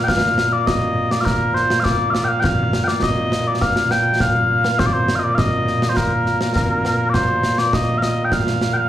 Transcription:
Already playing: bagpipes A#2 A#3
0.04 bagpipes G5
0.08 bagpipes F5, concert bass drum, snare
0.38 snare
0.53 bagpipes D5
0.67 bagpipes D#5, concert bass drum, snare
1.11 bagpipes D5, snare
1.21 bagpipes F5
1.25 bagpipes A#4, concert bass drum, snare
1.54 bagpipes C5, snare
1.70 snare
1.80 bagpipes F5
1.84 bagpipes D5, concert bass drum, snare
2.10 bagpipes D5 F5
2.15 snare
2.24 bagpipes F5 G5
2.40 bagpipes G5
2.44 bagpipes F5, concert bass drum, snare
2.73 snare
2.84 bagpipes D5 G5
2.88 snare
3.03 bagpipes D#5, concert bass drum, snare
3.32 snare
3.47 bagpipes D5
3.61 bagpipes F5, concert bass drum, snare
3.76 snare
3.91 bagpipes G5, snare
4.20 bagpipes F5, concert bass drum, snare
4.64 snare
4.79 bagpipes C5, concert bass drum, snare
4.86 bagpipes D5
4.93 bagpipes C5
5.08 snare
5.15 bagpipes D#5 F5
5.23 bagpipes D5
5.35 bagpipes D#5 F5, concert bass drum, snare
5.68 snare
5.82 snare
5.89 bagpipes C5
5.96 bagpipes A#4, concert bass drum, snare
6.26 snare
6.41 snare
6.56 concert bass drum, snare
6.85 snare
7.10 bagpipes D5
7.14 bagpipes C5, concert bass drum, snare
7.43 snare
7.58 bagpipes D5, snare
7.73 bagpipes D#5, concert bass drum, snare
7.98 bagpipes F5
8.02 bagpipes D#5, snare
8.25 bagpipes G5
8.32 bagpipes F5, concert bass drum, snare
8.47 snare
8.61 snare
8.73 bagpipes F5 G5

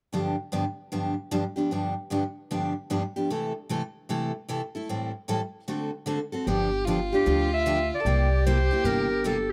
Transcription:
0.13 steel-string acoustic guitar G2 D3 F3 B3 D4 G4
0.52 steel-string acoustic guitar G2 D3 F3 B3 D4 G4
0.92 steel-string acoustic guitar G2 D3 F3 B3 D4 G4
1.31 steel-string acoustic guitar G2 D3 F3 B3 D4 G4
1.56 steel-string acoustic guitar F3 B3 D4 G4
1.71 steel-string acoustic guitar G2 D3 F3 B3 D4 G4
2.10 steel-string acoustic guitar G2 D3 F3 B3 D4 G4
2.51 steel-string acoustic guitar G2 D3 F3 B3 D4 G4
2.90 steel-string acoustic guitar G2 D3 F3 B3 D4 G4
3.16 steel-string acoustic guitar F3 B3 D4 G4
3.30 steel-string acoustic guitar C3 E3 A3 E4 A4
3.69 steel-string acoustic guitar C3 E3 A3 E4 A4
4.09 steel-string acoustic guitar C3 E3 A3 E4 A4
4.49 steel-string acoustic guitar C3 E3 A3 E4 A4
4.75 steel-string acoustic guitar A3 E4 A4
4.89 steel-string acoustic guitar A2 E3 G3 C4 E4 A4
5.28 steel-string acoustic guitar A2 E3 G3 C4 E4 A4
5.68 steel-string acoustic guitar D3 A3 C4 F#4 A4
6.06 steel-string acoustic guitar D3 A3 C4 F#4 A4
6.32 steel-string acoustic guitar C4 F#4 A4
6.46 upright bass G1, steel-string acoustic guitar D3 F3 B3 D4 G4, violin G4
6.85 steel-string acoustic guitar D3 F3 B3 D4 G4, violin F4
7.12 steel-string acoustic guitar B3 D4 G4, clarinet G4
7.26 upright bass D2, steel-string acoustic guitar D3 F3 B3 D4 G4
7.53 clarinet E5
7.66 steel-string acoustic guitar D3 F3 B3 D4 G4
7.95 clarinet D5
8.00 violin A4
8.05 upright bass C2, steel-string acoustic guitar C3 G3 A#3 E4 G4, violin G4
8.46 steel-string acoustic guitar C3 G3 A#3 E4 G4, clarinet C5
8.71 steel-string acoustic guitar A#3 E4 G4
8.84 upright bass G1, steel-string acoustic guitar C3 G3 A#3 E4 G4, clarinet A#4
9.24 steel-string acoustic guitar C3 G3 A#3 E4 G4, clarinet A4

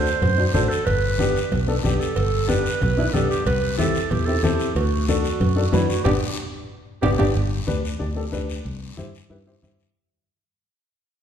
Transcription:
Already playing: clarinet C5
0.06 short guiro
0.22 fingered electric bass F#2, cowbell, high conga, low conga, long guiro
0.38 upright piano D4 F#4 C5
0.54 fingered electric bass A1, upright piano D4 F#4 A4, clarinet C5, high conga, short guiro
0.69 clarinet A4, short guiro
0.85 fingered electric bass G1, clarinet B4, cowbell, high conga, low conga, long guiro
1.19 upright piano B3 D4 G4, high conga, short guiro
1.36 short guiro
1.52 fingered electric bass B1, cowbell, high conga, low conga, long guiro
1.67 upright piano B3 D4 A4
1.83 fingered electric bass B1, upright piano B3 D4 G4, clarinet G4, high conga, short guiro
2.00 clarinet A4, short guiro
2.16 fingered electric bass G1, cowbell, high conga, long guiro
2.47 upright piano B3 D4 G4, clarinet B4, high conga, short guiro
2.66 short guiro
2.81 fingered electric bass B1, cowbell, high conga, low conga, long guiro
2.97 upright piano B3 D4 E4
3.13 fingered electric bass B1, upright piano B3 D4 G4, clarinet A4, high conga, short guiro
3.30 clarinet G4, short guiro
3.46 fingered electric bass C2, clarinet B4, cowbell, high conga, low conga, long guiro
3.78 upright piano C4 E4 G4, clarinet A4, high conga, short guiro
3.95 short guiro
4.10 fingered electric bass E2, clarinet G4, cowbell, high conga, low conga, long guiro
4.26 upright piano C4 E4 G4, clarinet A4
4.43 fingered electric bass E2, upright piano C4 E4 A4, clarinet G4, high conga, short guiro
4.60 short guiro
4.75 fingered electric bass D2, clarinet F#4, cowbell, high conga, long guiro
5.08 upright piano D4 F#4 A4, clarinet F#4, high conga, short guiro
5.25 short guiro
5.40 fingered electric bass F#2, cowbell, high conga, low conga, long guiro
5.56 upright piano D4 F#4 A4
5.72 fingered electric bass F#2, upright piano D4 F#4 B4, clarinet E4, high conga, low timbale, short guiro
5.88 clarinet F#4, short guiro
6.04 fingered electric bass G1, upright piano B3 D4 G4, clarinet G4, low conga, high timbale, long guiro
7.02 fingered electric bass G1, upright piano B3 D4 G4, clarinet G4, low conga, high timbale, long guiro
7.18 fingered electric bass G1, upright piano B3 D4 G4, clarinet G4, low conga, high timbale, long guiro
7.35 fingered electric bass G1, high conga, long guiro
7.67 fingered electric bass D2, upright piano D4 G4 B4, high conga, short guiro
7.85 short guiro
7.99 fingered electric bass D2, upright piano D4 G4 D5, high conga, long guiro
8.16 upright piano D4 G4 A4
8.32 fingered electric bass D2, upright piano D4 G4 B4, high conga, short guiro
8.50 short guiro
8.65 fingered electric bass C2, high conga, long guiro
8.97 fingered electric bass G2, upright piano E4 G4 C5, high conga, short guiro
9.15 short guiro
9.30 fingered electric bass G2, upright piano E4 G4 B4, high conga, long guiro
9.47 upright piano E4 G4 C5
9.62 fingered electric bass G2, upright piano E4 G4 C5, high conga, short guiro
9.80 short guiro

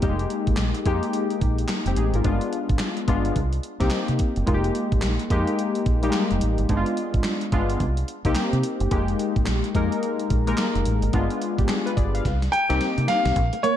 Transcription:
0.02 fingered electric bass F1, synth keys G3 A#3 D#4 G4, kick, closed hi-hat
0.09 synth keys G#3
0.19 closed hi-hat
0.30 closed hi-hat
0.47 fingered electric bass G#1, kick, closed hi-hat
0.57 fingered electric bass A#1, snare, clap, closed hi-hat
0.74 closed hi-hat
0.85 fingered electric bass F2, synth keys G#3 A#3 D#4 G4, kick, closed hi-hat
1.03 closed hi-hat
1.13 closed hi-hat
1.30 closed hi-hat
1.41 fingered electric bass A#1, kick, closed hi-hat
1.58 closed hi-hat
1.68 snare, clap, closed hi-hat
1.86 fingered electric bass F1, synth keys C4 G4, closed hi-hat
1.96 fingered electric bass A1, synth keys D#4 G#4, closed hi-hat
2.14 fingered electric bass G#1, synth keys F4 A#4, closed hi-hat
2.24 fingered electric bass G1, synth keys G#3 B3 D4 F4, kick, closed hi-hat
2.41 closed hi-hat
2.53 closed hi-hat
2.69 fingered electric bass G#1, kick, closed hi-hat
2.79 snare, clap, closed hi-hat
2.97 closed hi-hat
3.08 fingered electric bass G1, synth keys G#3 B3 D4 F4, kick, closed hi-hat
3.25 closed hi-hat
3.36 fingered electric bass C2, kick, closed hi-hat
3.53 closed hi-hat
3.63 closed hi-hat
3.80 fingered electric bass C2, synth keys A#3 C4 D#4 G4, kick, snare, closed hi-hat
3.90 snare, clap, closed hi-hat
4.08 fingered electric bass C3, closed hi-hat
4.19 kick, closed hi-hat
4.36 fingered electric bass F#1, closed hi-hat
4.46 fingered electric bass F1, synth keys G#3 A#3 D#4 F4, kick, closed hi-hat
4.54 synth keys G4
4.64 closed hi-hat
4.75 closed hi-hat
4.92 fingered electric bass G#1, kick, closed hi-hat
5.02 fingered electric bass A#1, snare, clap, closed hi-hat
5.19 closed hi-hat
5.30 fingered electric bass F2, synth keys G#3 A#3 D#4 G4, kick, closed hi-hat
5.47 closed hi-hat
5.59 closed hi-hat
5.75 closed hi-hat
5.86 fingered electric bass A#1, kick, closed hi-hat
6.02 synth keys G3 A#3 D#4 G4, closed hi-hat
6.09 synth keys G#3, clap, closed hi-hat
6.13 snare
6.31 fingered electric bass F1, closed hi-hat
6.41 fingered electric bass A1, closed hi-hat
6.58 fingered electric bass G#1, closed hi-hat
6.69 fingered electric bass G1, synth keys G#3 B3 D4 D#4, kick, closed hi-hat
6.77 synth keys F4
6.86 closed hi-hat
6.97 closed hi-hat
7.14 fingered electric bass G#1, kick, closed hi-hat
7.24 snare, clap, closed hi-hat
7.41 closed hi-hat
7.52 fingered electric bass G1, synth keys G#3 B3 D4 F4, kick, closed hi-hat
7.70 closed hi-hat
7.80 fingered electric bass C2, kick, closed hi-hat
7.97 closed hi-hat
8.08 closed hi-hat
8.25 fingered electric bass C2, synth keys A#3 C4 D#4 G4, kick, closed hi-hat
8.35 snare, clap, closed hi-hat
8.53 fingered electric bass C3, closed hi-hat
8.63 closed hi-hat
8.80 fingered electric bass F#1, closed hi-hat
8.91 fingered electric bass F1, synth keys G#3 A#3 D#4 G4, kick, closed hi-hat
9.08 closed hi-hat
9.19 closed hi-hat
9.36 fingered electric bass G#1, kick, closed hi-hat
9.46 fingered electric bass A#1, snare, clap, closed hi-hat
9.64 closed hi-hat
9.75 fingered electric bass F2, synth keys G#3 A#3 D#4 A#4, kick, closed hi-hat
9.92 closed hi-hat
10.03 closed hi-hat
10.19 closed hi-hat
10.30 fingered electric bass A#1, kick, closed hi-hat
10.47 synth keys G#3 A#3 D#4 A#4, closed hi-hat
10.57 snare, clap, closed hi-hat
10.75 fingered electric bass F1, closed hi-hat
10.85 fingered electric bass A1, closed hi-hat
11.02 fingered electric bass G#1, closed hi-hat
11.13 fingered electric bass G1, synth keys G#3 B3 D4 F4, kick, closed hi-hat
11.30 closed hi-hat
11.42 closed hi-hat
11.59 fingered electric bass G#1, synth keys D4 G4, kick, closed hi-hat
11.68 synth keys D4 G#4, snare, clap, closed hi-hat
11.86 synth keys F4 B4, closed hi-hat
11.97 fingered electric bass G1, synth keys G#4 D5, kick, closed hi-hat
12.15 synth keys B4 F5, closed hi-hat
12.25 fingered electric bass C2, kick, snare, closed hi-hat
12.42 snare, closed hi-hat
12.52 grand piano G5, closed hi-hat
12.69 fingered electric bass C2, synth keys A#3 C4 D#4 G4, snare, closed hi-hat
12.81 snare, closed hi-hat
12.98 fingered electric bass C3, closed hi-hat
13.08 grand piano F5, snare, closed hi-hat
13.25 fingered electric bass B1, snare, closed hi-hat
13.36 fingered electric bass A#1, kick, closed hi-hat
13.53 muted clean electric guitar stroke, closed hi-hat
13.63 clean electric guitar A#3, grand piano C#5, closed hi-hat

